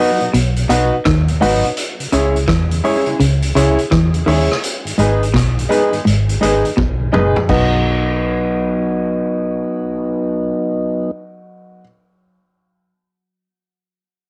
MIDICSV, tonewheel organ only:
0, 0, Header, 1, 2, 480
1, 0, Start_track
1, 0, Key_signature, 5, "major"
1, 0, Tempo, 714541
1, 1188, Time_signature, 4, 2, 24, 8
1, 9603, End_track
2, 0, Start_track
2, 0, Title_t, "Tonewheel organ"
2, 0, Program_c, 0, 16
2, 0, Note_on_c, 0, 54, 69
2, 0, Note_on_c, 0, 59, 71
2, 0, Note_on_c, 0, 63, 79
2, 80, Note_off_c, 0, 54, 0
2, 81, Note_off_c, 0, 59, 0
2, 81, Note_off_c, 0, 63, 0
2, 143, Note_on_c, 0, 47, 58
2, 194, Note_off_c, 0, 47, 0
2, 386, Note_on_c, 0, 47, 58
2, 435, Note_off_c, 0, 47, 0
2, 470, Note_on_c, 0, 54, 70
2, 473, Note_on_c, 0, 59, 62
2, 476, Note_on_c, 0, 63, 74
2, 559, Note_off_c, 0, 54, 0
2, 561, Note_off_c, 0, 59, 0
2, 562, Note_off_c, 0, 63, 0
2, 626, Note_on_c, 0, 47, 54
2, 675, Note_off_c, 0, 47, 0
2, 862, Note_on_c, 0, 47, 59
2, 913, Note_off_c, 0, 47, 0
2, 949, Note_on_c, 0, 54, 79
2, 951, Note_on_c, 0, 59, 72
2, 952, Note_on_c, 0, 63, 81
2, 1039, Note_off_c, 0, 54, 0
2, 1040, Note_off_c, 0, 59, 0
2, 1040, Note_off_c, 0, 63, 0
2, 1101, Note_on_c, 0, 47, 58
2, 1153, Note_off_c, 0, 47, 0
2, 1341, Note_on_c, 0, 49, 57
2, 1393, Note_off_c, 0, 49, 0
2, 1426, Note_on_c, 0, 56, 71
2, 1429, Note_on_c, 0, 61, 70
2, 1431, Note_on_c, 0, 64, 81
2, 1518, Note_off_c, 0, 56, 0
2, 1519, Note_off_c, 0, 61, 0
2, 1520, Note_off_c, 0, 64, 0
2, 1584, Note_on_c, 0, 49, 59
2, 1634, Note_off_c, 0, 49, 0
2, 1821, Note_on_c, 0, 49, 56
2, 1873, Note_off_c, 0, 49, 0
2, 1906, Note_on_c, 0, 56, 72
2, 1906, Note_on_c, 0, 61, 68
2, 1910, Note_on_c, 0, 64, 84
2, 1997, Note_off_c, 0, 56, 0
2, 1997, Note_off_c, 0, 61, 0
2, 1999, Note_off_c, 0, 64, 0
2, 2061, Note_on_c, 0, 49, 54
2, 2113, Note_off_c, 0, 49, 0
2, 2300, Note_on_c, 0, 49, 57
2, 2352, Note_off_c, 0, 49, 0
2, 2386, Note_on_c, 0, 56, 70
2, 2388, Note_on_c, 0, 61, 64
2, 2390, Note_on_c, 0, 64, 81
2, 2478, Note_off_c, 0, 56, 0
2, 2479, Note_off_c, 0, 61, 0
2, 2479, Note_off_c, 0, 64, 0
2, 2538, Note_on_c, 0, 49, 55
2, 2591, Note_off_c, 0, 49, 0
2, 2782, Note_on_c, 0, 49, 60
2, 2833, Note_off_c, 0, 49, 0
2, 2864, Note_on_c, 0, 56, 71
2, 2868, Note_on_c, 0, 61, 68
2, 2870, Note_on_c, 0, 64, 80
2, 2957, Note_off_c, 0, 56, 0
2, 2958, Note_off_c, 0, 61, 0
2, 2960, Note_off_c, 0, 64, 0
2, 3022, Note_on_c, 0, 49, 57
2, 3074, Note_off_c, 0, 49, 0
2, 3259, Note_on_c, 0, 44, 59
2, 3259, Note_on_c, 0, 51, 55
2, 3312, Note_off_c, 0, 44, 0
2, 3312, Note_off_c, 0, 51, 0
2, 3341, Note_on_c, 0, 56, 70
2, 3343, Note_on_c, 0, 59, 65
2, 3346, Note_on_c, 0, 63, 79
2, 3435, Note_off_c, 0, 56, 0
2, 3436, Note_off_c, 0, 59, 0
2, 3437, Note_off_c, 0, 63, 0
2, 3497, Note_on_c, 0, 44, 57
2, 3498, Note_on_c, 0, 51, 58
2, 3551, Note_off_c, 0, 44, 0
2, 3552, Note_off_c, 0, 51, 0
2, 3739, Note_on_c, 0, 51, 51
2, 3741, Note_on_c, 0, 44, 57
2, 3792, Note_off_c, 0, 51, 0
2, 3793, Note_off_c, 0, 44, 0
2, 3824, Note_on_c, 0, 56, 73
2, 3827, Note_on_c, 0, 59, 65
2, 3828, Note_on_c, 0, 63, 81
2, 3917, Note_off_c, 0, 56, 0
2, 3918, Note_off_c, 0, 59, 0
2, 3919, Note_off_c, 0, 63, 0
2, 3981, Note_on_c, 0, 44, 51
2, 3982, Note_on_c, 0, 51, 53
2, 4033, Note_off_c, 0, 44, 0
2, 4034, Note_off_c, 0, 51, 0
2, 4220, Note_on_c, 0, 44, 57
2, 4221, Note_on_c, 0, 51, 58
2, 4273, Note_off_c, 0, 44, 0
2, 4273, Note_off_c, 0, 51, 0
2, 4304, Note_on_c, 0, 56, 68
2, 4307, Note_on_c, 0, 59, 61
2, 4309, Note_on_c, 0, 63, 75
2, 4397, Note_off_c, 0, 56, 0
2, 4398, Note_off_c, 0, 59, 0
2, 4399, Note_off_c, 0, 63, 0
2, 4462, Note_on_c, 0, 44, 53
2, 4463, Note_on_c, 0, 51, 55
2, 4513, Note_off_c, 0, 44, 0
2, 4514, Note_off_c, 0, 51, 0
2, 4702, Note_on_c, 0, 44, 60
2, 4703, Note_on_c, 0, 51, 55
2, 4754, Note_off_c, 0, 44, 0
2, 4754, Note_off_c, 0, 51, 0
2, 4792, Note_on_c, 0, 56, 73
2, 4792, Note_on_c, 0, 59, 62
2, 4795, Note_on_c, 0, 63, 76
2, 4880, Note_off_c, 0, 56, 0
2, 4881, Note_off_c, 0, 59, 0
2, 4882, Note_off_c, 0, 63, 0
2, 4948, Note_on_c, 0, 51, 53
2, 4949, Note_on_c, 0, 44, 58
2, 4997, Note_off_c, 0, 44, 0
2, 4997, Note_off_c, 0, 51, 0
2, 5031, Note_on_c, 0, 54, 86
2, 5036, Note_on_c, 0, 59, 74
2, 5038, Note_on_c, 0, 63, 92
2, 7461, Note_off_c, 0, 54, 0
2, 7463, Note_off_c, 0, 59, 0
2, 7465, Note_off_c, 0, 63, 0
2, 9603, End_track
0, 0, End_of_file